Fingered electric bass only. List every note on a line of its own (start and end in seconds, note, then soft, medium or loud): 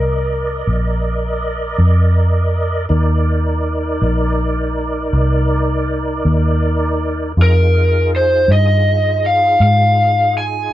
0.00 0.64 C2 medium
0.67 1.76 A#1 medium
1.78 2.87 F2 medium
2.90 3.98 D#2 medium
4.02 5.10 A#1 medium
5.13 6.22 C2 medium
6.25 7.33 D#2 medium
7.37 8.45 F2 medium
8.48 9.57 G2 medium
9.60 10.68 G#2 medium